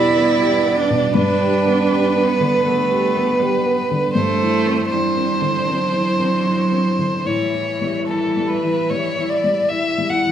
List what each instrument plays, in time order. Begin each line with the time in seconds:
Already playing: grand piano E2 B2 B3 G4, string section G3 D4 B4, cello E4, violin D5
0.16 grand piano B3
0.40 grand piano G4
0.65 grand piano B3
0.76 cello D4
0.90 grand piano B2
1.14 grand piano G2, cello D4, violin B4
1.40 grand piano G4
1.65 grand piano B3
1.91 grand piano G4
2.16 grand piano B3
2.27 cello B3
2.40 grand piano D3
2.65 cello A3, grand piano B3
2.91 grand piano G4
3.15 grand piano B3
3.39 cello G3, grand piano G4
3.65 grand piano B3
3.91 grand piano D3
4.14 grand piano G2, string section E3 D4 C5, cello A3, violin C5
4.41 grand piano E4
4.66 grand piano C4
4.90 cello G3, grand piano E4, violin C5
5.16 grand piano C4
5.41 grand piano D3
5.67 cello F#3, grand piano C4
5.94 grand piano E4
6.19 grand piano C4
6.45 grand piano E4
6.72 grand piano C4
6.99 grand piano D3
7.25 grand piano A2, cello E3, string section G3 E4 E5, violin C#5
7.54 grand piano E4
7.81 grand piano G3
8.07 grand piano E4, violin A4
8.37 grand piano G3
8.48 violin B4
8.63 grand piano E3
8.90 grand piano G3, violin C#5
9.18 grand piano E4
9.29 violin D5
9.44 grand piano G3
9.69 grand piano E4, violin E5
9.98 grand piano G3
10.10 grand piano E4, violin F#5
10.25 grand piano E3